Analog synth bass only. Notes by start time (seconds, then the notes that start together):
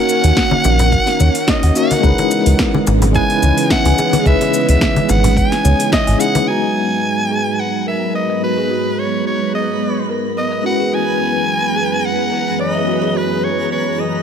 0.24 D#2
0.65 A#1
1.20 D#2
1.63 D#2
2.04 C#2
2.46 C#2
2.87 G#1
3.43 C#2
3.85 C#2
4.26 C#2
4.69 C#2
5.10 G#1
5.65 C#2
6.08 G#1